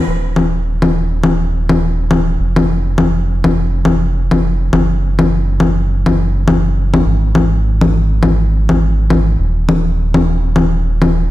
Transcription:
0.07 2.38 D#1 medium
0.36 low conga medium
0.82 low conga medium
1.24 low conga medium
1.69 low conga medium
2.11 low conga medium
2.40 4.71 F1 medium
2.56 low conga medium
2.98 low conga medium
3.44 low conga medium
3.85 low conga medium
4.31 low conga medium
4.73 7.04 F#1 medium
4.73 low conga medium
5.19 low conga medium
5.60 low conga medium
6.06 low conga medium
6.48 low conga medium
6.94 low conga medium
7.06 9.37 G#1 medium
7.35 low conga medium
7.81 low conga medium
8.23 low conga medium
8.69 low conga medium
9.10 low conga medium
9.40 11.31 D#1 medium
9.69 low conga medium
10.14 low conga medium
10.56 low conga medium
11.02 low conga medium

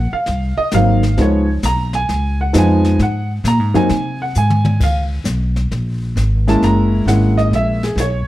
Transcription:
0.00 0.13 F#5 medium
0.13 0.55 F5 medium
0.13 muted upright bass stroke soft
0.26 0.56 C2 medium
0.26 brush sweep soft
0.26 snare soft
0.58 0.72 D#5 medium
0.58 muted upright bass stroke soft
0.71 1.17 G#1 medium
0.71 1.00 F#3 medium
0.71 1.01 A#3 medium
0.71 1.01 C4 medium
0.71 1.01 D#4 medium
0.71 1.16 F5 medium
0.71 snare medium
0.71 hi-hat pedal medium
1.03 snare soft
1.17 1.62 C#2 medium
1.17 1.45 F3 medium
1.17 1.45 G#3 medium
1.17 1.45 B3 medium
1.17 1.45 D#4 medium
1.17 1.49 C#5 medium
1.17 brush sweep soft
1.17 snare soft
1.63 2.07 B1 medium
1.63 1.94 A#5 loud
1.63 snare medium
1.63 hi-hat pedal medium
1.93 2.36 G#5 loud
1.93 snare soft
2.09 2.53 C#2 medium
2.09 brush sweep soft
2.09 snare soft
2.41 2.54 F#5 medium
2.53 2.98 F2 medium
2.53 2.99 F3 medium
2.53 2.99 G#3 medium
2.53 2.99 B3 medium
2.53 2.99 D#4 medium
2.53 snare medium
2.53 hi-hat pedal medium
2.58 2.98 G#5 loud
2.85 snare soft
2.99 3.43 G#2 medium
2.99 3.30 F#5 medium
2.99 brush sweep soft
2.99 snare soft
3.44 3.60 A#2 medium
3.44 3.75 A#5 loud
3.44 snare medium
3.44 hi-hat pedal medium
3.60 3.74 G#2 soft
3.74 3.88 F#2 medium
3.74 3.88 F#3 medium
3.74 3.88 A#3 medium
3.74 3.88 C4 medium
3.74 3.88 D#4 medium
3.74 4.17 G#5 loud
3.74 snare soft
3.89 4.34 C3 medium
3.89 brush sweep soft
3.89 snare soft
4.22 4.35 F#5 medium
4.35 4.79 G#2 medium
4.35 4.78 G#5 medium
4.35 hi-hat pedal medium
4.50 mid tom medium
4.65 mid tom medium
4.80 5.24 C#2 medium
4.80 5.00 F5 medium
4.80 brush sweep medium
4.80 kick medium
4.80 snare soft
4.80 crash medium
5.24 5.69 B1 medium
5.24 snare medium
5.24 hi-hat pedal medium
5.56 snare soft
5.71 6.15 A#1 medium
5.71 brush sweep soft
5.71 snare soft
6.16 6.60 G#1 medium
6.16 snare medium
6.16 hi-hat pedal medium
6.47 7.04 G#3 medium
6.47 7.04 A#3 medium
6.47 7.04 C#4 medium
6.47 7.04 E4 medium
6.47 6.62 A5 medium
6.47 snare soft
6.62 7.05 F#1 medium
6.62 7.04 A#5 medium
6.62 brush sweep soft
6.62 snare soft
7.06 7.50 G#1 medium
7.06 7.76 G#3 medium
7.06 7.76 A#3 medium
7.06 7.76 C#4 medium
7.06 7.76 E4 medium
7.06 7.36 F#5 medium
7.06 snare medium
7.06 hi-hat pedal medium
7.37 7.51 D#5 medium
7.37 snare soft
7.51 7.95 A#1 medium
7.51 brush sweep soft
7.51 snare soft
7.55 7.83 E5 medium
7.83 7.97 G#4 medium
7.83 snare soft
7.96 8.24 B1 medium
7.96 snare medium
7.96 hi-hat pedal medium
8.00 8.27 C#5 medium

